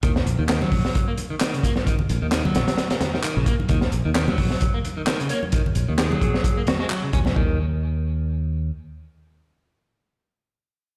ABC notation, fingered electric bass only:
X:1
M:4/4
L:1/16
Q:"Swing 16ths" 1/4=131
K:Ebm
V:1 name="Fingered electric bass" clef=bass
E,, z B,,, E,,2 z B,,, z8 z | z2 B,,, E,,2 z B,,, z6 B,,, z2 | E,, z B,,, E,,2 z B,,, z8 z | z2 B,,, E,,2 z B,,, z6 z E,, D,, |
E,,12 z4 | z16 |]